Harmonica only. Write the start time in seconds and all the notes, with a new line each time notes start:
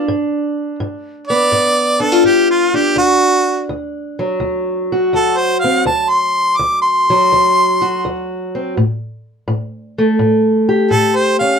1.27 D5
2.01 A4
2.26 G4
2.50 F4
2.75 G4
2.98 F#4
5.15 A4
5.38 C5
5.60 F5
5.87 A5
6.09 C6
6.57 D6
6.82 C6
10.91 A4
11.16 C5
11.39 F5